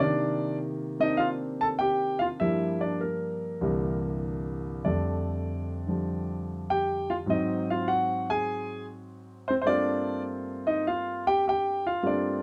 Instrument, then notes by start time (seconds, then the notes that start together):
grand piano
0.00 C3 D#3 A#3 D4 D5
0.99 A#3 C4 D4 D#4 D#5
1.17 F4 F5
1.61 A4 A5
1.79 G4 G5
2.19 F4 F5
2.40 G2 F3 G3 A#3 E4 E5
2.81 D4 D5
3.01 A#3 A#4
3.61 C2 G2 D3 E3 G3 A#3
4.85 F2 D3 G3 A3 D4 D5
5.87 D3 F3 G3
6.70 G4 G5
7.10 F4 F5
7.26 G#2 F#3 C4 D#5
7.31 D#4
7.70 F4 F5
7.88 F#4 F#5
8.30 G#4 G#5
9.48 C4 C5
9.62 G2 G3 A3 C5
9.67 A#3 C4 D4 F4 D5
10.67 D#4 D#5
10.87 F4 F5
11.27 G4 G5
11.48 G4 G5
11.86 F4 F5
12.03 G2 G3 A3 A#3 C4 D4 F4
12.07 D5